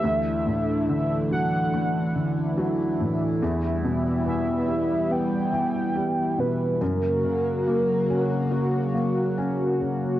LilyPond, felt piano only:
\new Staff \with { instrumentName = "Felt piano" } { \clef bass \time 4/4 \key d \major \tempo 4 = 71 d,8 a,8 d8 fis8 a8 d8 fis8 a,8 | e,8 b,8 e8 g8 b8 e8 g8 b,8 | fis,8 cis8 ais8 cis'8 fis'8 ais8 cis'8 cis8 | }